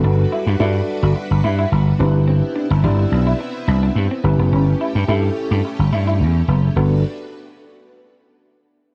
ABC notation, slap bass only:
X:1
M:4/4
L:1/16
Q:1/4=107
K:G
V:1 name="Slap bass" clef=bass
G,,,2 z G,, G,,2 z G,,, z G,,, G,,2 G,,,2 G,,,2- | G,,,2 z G,,, G,,,2 B,,,2 z2 C,,2 G,, z G,,, F,,, | G,,,2 z G,, G,,2 z G,, z G,,, G,,2 E,,2 F,,,2 | G,,,2 z12 z2 |]